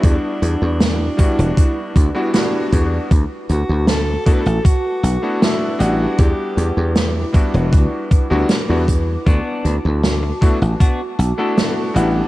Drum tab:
HH |x-x-x-xxx-x-x-x-|x-x-x-xxx-x-x-x-|x-x-x-xxx-x-x-x-|x-x-x-xxx-x-x-x-|
SD |----o-------o---|----o-------o---|----o-------o---|----o-------o---|
BD |o-----o-o-o---o-|o-----o-o-------|o-----o-o-o---o-|o-----o-o-------|